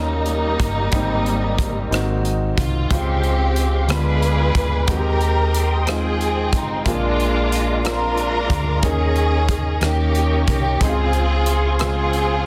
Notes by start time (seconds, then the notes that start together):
Already playing: D#2 D#3 G3 A#3 C#4 D#4 G4 A#4
0.26 closed hi-hat
0.59 G1, kick, closed hi-hat
0.92 G#1 G#2 G3 C4 D#4 G4, kick, closed hi-hat
1.26 closed hi-hat
1.58 kick, closed hi-hat
1.90 G#1 G#2 D#3 C4 D#4 F#4, cross-stick, closed hi-hat
2.25 closed hi-hat
2.57 C2 F4, kick, closed hi-hat
2.90 C#2 C#3 G#3 C4 F4 G4 F5 C6 C#6, kick, closed hi-hat
3.24 closed hi-hat
3.56 closed hi-hat
3.88 D2 D3 G#3 B3 D4 F4 G#4 B4 B5, cross-stick, closed hi-hat
4.22 closed hi-hat
4.54 D2, kick, closed hi-hat
4.87 D#2 D#3 G#3 C4 D#4 F#4 G4 A#4 G5 C6 D#6, kick, closed hi-hat
4.97 G4
5.21 closed hi-hat
5.54 closed hi-hat
5.87 G#3 C4 D#4 F4 G#4, cross-stick, closed hi-hat
6.21 closed hi-hat
6.53 A1 D#4, kick, closed hi-hat
6.84 A#1 A#2 G#3 A#3 C4 D4 F4 G#4 F5 A#5, kick, closed hi-hat
6.93 D4
7.20 closed hi-hat
7.52 closed hi-hat
7.84 A#3 C4 D4 F4 A#4, cross-stick, closed hi-hat
7.91 D4
8.17 closed hi-hat
8.49 D2, kick, closed hi-hat
8.83 D#2 D#3 A#3 C#4 D#4 G#4 D#5 C#6, kick, closed hi-hat
9.16 closed hi-hat
9.49 kick, closed hi-hat
9.81 D#2 D#3 A#3 C#4 D#4 G4, cross-stick, closed hi-hat
10.15 closed hi-hat
10.47 C2 G4, kick, closed hi-hat
10.80 C#2 C#3 G#3 C4 D#4 F4 G#4 F5 C6 C#6, kick, closed hi-hat
10.89 F4
11.13 closed hi-hat
11.46 closed hi-hat
11.79 C#3 G#3 C4 F4 G#4, cross-stick, closed hi-hat
12.13 closed hi-hat